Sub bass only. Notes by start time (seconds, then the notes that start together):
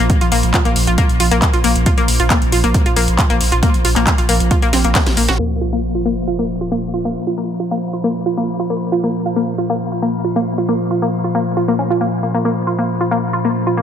0.21 A#1
0.32 A#1
0.43 A#1
0.65 A#1
0.76 A#1
0.87 A#1
1.09 A#1
1.20 A#1
1.32 A#1
1.54 A#1
1.64 A#1
1.76 A#1
1.98 A#1
2.08 A#1
2.20 A#1
2.42 A#1
2.52 A#1
2.64 A#1
2.86 A#1
2.97 A#1
3.08 A#1
3.30 A#1
3.41 A#1
3.52 A#1
3.74 A#1
3.85 A#1
3.96 A#1
4.18 A#1
4.29 A#1
4.40 A#1
4.62 A#1
4.73 A#1
4.84 A#1
5.07 A#1
5.17 A#1
5.29 A#1